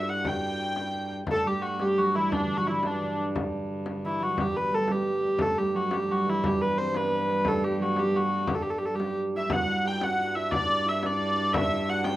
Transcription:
0.00 1.29 G2 medium
0.00 0.97 D4 medium
0.00 2.53 E4 medium
0.00 1.50 A4 medium
0.08 0.30 F#4 medium
0.08 0.27 F#5 medium
0.24 2.03 G4 medium
0.24 1.12 G5 medium
0.24 frame drum medium
0.60 frame drum soft
0.76 frame drum medium
0.94 frame drum soft
1.11 frame drum soft
1.27 5.39 G2 medium
1.27 4.60 A3 medium
1.27 frame drum medium
1.31 1.47 A4 loud
1.46 1.80 G3 medium
1.46 1.63 G4 medium
1.62 1.81 F#4 medium
1.79 2.03 G3 medium
1.79 1.98 G4 medium
1.79 frame drum medium
1.97 2.21 F#3 medium
1.97 2.15 F#4 medium
1.97 frame drum soft
2.15 2.37 E3 medium
2.15 2.33 E4 medium
2.31 2.73 D3 medium
2.31 2.57 D4 medium
2.31 frame drum medium
2.57 2.73 F#3 medium
2.57 2.67 F#4 medium
2.67 2.90 E3 medium
2.67 2.87 E4 medium
2.83 3.05 D3 medium
2.83 3.21 D4 medium
2.83 frame drum medium
3.01 frame drum soft
3.05 4.10 D3 medium
3.36 frame drum medium
3.86 frame drum medium
4.03 4.26 E3 medium
4.03 4.23 E4 medium
4.03 frame drum soft
4.20 4.43 F#3 medium
4.20 4.40 F#4 medium
4.37 4.77 G3 medium
4.37 4.57 G4 medium
4.37 frame drum medium
4.55 6.61 B3 medium
4.55 4.75 B4 medium
4.55 frame drum soft
4.71 5.40 A3 medium
4.71 4.92 A4 medium
4.88 5.46 G3 medium
4.88 5.42 G4 medium
4.88 frame drum medium
5.23 frame drum soft
5.39 9.49 G2 medium
5.39 7.45 A3 medium
5.39 5.58 A4 medium
5.39 frame drum medium
5.58 5.80 G3 medium
5.58 5.76 G4 medium
5.74 5.97 F#3 medium
5.74 5.93 F#4 medium
5.91 6.13 G3 medium
5.91 6.11 G4 medium
5.91 frame drum medium
6.07 6.32 F#3 medium
6.07 6.29 F#4 medium
6.07 frame drum soft
6.26 7.86 E3 medium
6.26 6.46 E4 medium
6.44 7.51 G3 medium
6.44 6.62 G4 medium
6.44 frame drum medium
6.61 6.84 B3 medium
6.61 6.78 B4 medium
6.78 6.89 C4 medium
6.78 6.97 C5 medium
6.89 7.00 C4 medium
6.94 7.28 B3 medium
6.94 7.30 B4 loud
6.94 frame drum medium
7.11 frame drum soft
7.29 10.39 B3 medium
7.29 7.48 B4 medium
7.45 10.78 A3 medium
7.45 7.64 A4 medium
7.45 frame drum medium
7.64 7.86 G3 medium
7.64 7.82 G4 medium
7.80 8.02 F#3 medium
7.80 7.99 F#4 medium
7.96 8.20 G3 medium
7.96 8.16 G4 medium
7.96 frame drum medium
8.13 9.00 F#3 medium
8.13 8.49 F#4 medium
8.13 frame drum soft
8.47 8.56 G4 medium
8.47 frame drum medium
8.55 8.63 A4 medium
8.63 8.71 G4 medium
8.70 8.79 A4 medium
8.79 8.86 G4 medium
8.79 frame drum soft
8.85 8.95 A4 medium
8.94 9.58 G3 medium
8.94 9.18 G4 medium
9.00 frame drum medium
9.35 10.35 E4 medium
9.35 9.53 E5 medium
9.50 12.16 G2 medium
9.50 9.91 F#4 medium
9.50 9.88 F#5 loud
9.50 frame drum loud
9.85 10.08 G4 medium
9.85 10.04 G5 medium
10.01 10.18 F#4 medium
10.01 10.37 F#5 medium
10.01 frame drum medium
10.18 11.88 F#4 medium
10.18 frame drum soft
10.35 10.85 E4 medium
10.35 10.51 E5 loud
10.35 frame drum soft
10.51 11.02 D4 medium
10.51 10.89 D5 loud
10.51 frame drum medium
10.86 11.55 E4 medium
10.86 11.06 E5 medium
11.03 11.37 D4 medium
11.03 11.53 D5 medium
11.03 frame drum medium
11.20 frame drum soft
11.36 12.16 D4 medium
11.36 frame drum soft
11.53 11.72 E4 medium
11.53 11.90 E5 loud
11.53 frame drum loud
11.73 12.16 E4 medium
11.88 12.12 F#4 medium
11.88 12.05 F#5 loud
12.04 12.16 G4 medium
12.04 12.16 G5 medium
12.04 frame drum medium

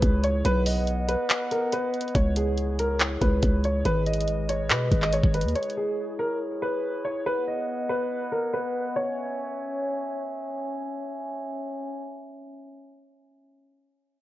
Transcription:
0.00 0.43 C#2 loud
0.00 0.43 E4 medium
0.00 0.41 G#4 medium
0.00 0.21 B4 medium
0.00 0.43 C#5 medium
0.00 kick loud
0.00 closed hi-hat medium
0.24 0.41 C#5 medium
0.24 closed hi-hat medium
0.45 1.16 B1 loud
0.45 2.13 B3 medium
0.45 2.13 B4 medium
0.45 0.63 B4 loud
0.45 2.13 D#5 medium
0.45 2.13 F#5 medium
0.45 closed hi-hat medium
0.66 1.06 D#5 medium
0.66 open hi-hat medium
0.87 closed hi-hat medium
1.09 1.49 B4 medium
1.09 closed hi-hat medium
1.30 clap loud
1.30 closed hi-hat medium
1.51 1.69 A#4 medium
1.51 closed hi-hat medium
1.72 2.13 B4 medium
1.72 closed hi-hat medium
1.94 closed hi-hat soft
2.01 closed hi-hat medium
2.08 closed hi-hat medium
2.15 3.18 C#2 loud
2.15 3.84 E4 medium
2.15 7.22 G#4 medium
2.15 2.32 C#5 medium
2.15 3.84 C#5 medium
2.15 kick loud
2.15 closed hi-hat medium
2.36 2.77 G#4 medium
2.36 closed hi-hat medium
2.58 closed hi-hat medium
2.79 2.97 A#4 medium
2.79 closed hi-hat medium
3.00 clap loud
3.00 closed hi-hat medium
3.21 3.42 C#2 loud
3.21 3.61 B4 medium
3.21 kick medium
3.21 closed hi-hat medium
3.43 3.84 C#2 loud
3.43 kick loud
3.43 closed hi-hat medium
3.64 3.82 C#5 medium
3.64 closed hi-hat medium
3.85 4.72 G#1 loud
3.85 5.54 G#3 medium
3.85 5.54 B4 medium
3.85 4.03 B4 loud
3.85 5.54 D#5 medium
3.85 closed hi-hat medium
4.07 4.47 D#5 medium
4.07 closed hi-hat medium
4.14 closed hi-hat medium
4.21 closed hi-hat medium
4.28 closed hi-hat medium
4.49 4.67 C#5 medium
4.49 closed hi-hat medium
4.70 4.91 B2 loud
4.70 5.00 B4 medium
4.70 clap loud
4.70 closed hi-hat medium
4.92 5.22 G#1 loud
4.92 kick medium
4.92 closed hi-hat medium
5.02 5.11 D#5 medium
5.02 clap medium
5.13 5.31 C#5 medium
5.13 closed hi-hat medium
5.24 5.46 G#1 loud
5.24 kick loud
5.34 5.52 B4 medium
5.34 closed hi-hat medium
5.41 5.55 D#2 loud
5.41 closed hi-hat medium
5.48 closed hi-hat medium
5.55 7.24 E4 medium
5.55 5.73 C#5 medium
5.55 7.24 C#5 medium
5.55 closed hi-hat medium
5.63 closed hi-hat soft
5.70 closed hi-hat soft
5.77 6.17 G#4 medium
6.19 6.37 A#4 medium
6.62 7.02 B4 medium
7.05 7.22 C#5 medium
7.25 8.94 B3 medium
7.25 8.94 B4 medium
7.25 7.44 B4 loud
7.25 8.94 D#5 medium
7.25 8.94 F#5 medium
7.47 7.87 D#5 medium
7.89 8.29 B4 medium
8.32 8.49 A#4 medium
8.53 8.93 B4 medium
8.96 12.03 C#4 medium
8.96 10.20 C#5 medium
8.96 12.03 C#5 medium
8.96 12.03 E5 medium
8.96 12.03 G#5 medium

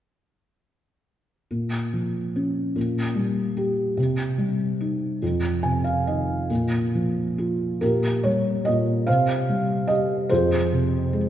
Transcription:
1.51 2.72 A#2 soft
1.94 2.73 F3 soft
2.36 2.75 C#4 soft
2.76 3.94 A#2 soft
3.15 3.95 G3 soft
3.57 3.97 G4 soft
3.97 5.18 C3 soft
4.38 5.19 G3 soft
4.81 5.21 D#4 soft
5.23 6.46 F2 soft
5.63 6.47 C3 soft
5.63 5.83 G#5 soft
5.84 6.04 F5 soft
6.07 6.49 D#3 soft
6.07 6.47 D#5 soft
6.50 7.77 A#2 soft
6.95 7.79 F3 soft
7.38 7.80 F4 soft
7.81 8.66 A#2 soft
7.81 9.04 G4 soft
7.81 8.26 A#4 medium
8.23 9.05 G3 soft
8.23 8.67 C#5 medium
8.65 9.07 A#2 soft
8.65 9.08 D#5 medium
9.07 10.27 C3 soft
9.07 10.25 C5 soft
9.07 9.91 F5 medium
9.49 10.28 G3 soft
9.88 10.29 G4 soft
9.88 10.30 D#5 medium
10.29 11.29 F2 soft
10.29 11.29 G#4 soft
10.29 11.17 C5 medium
10.72 11.29 C3 soft
11.13 11.29 G#3 soft

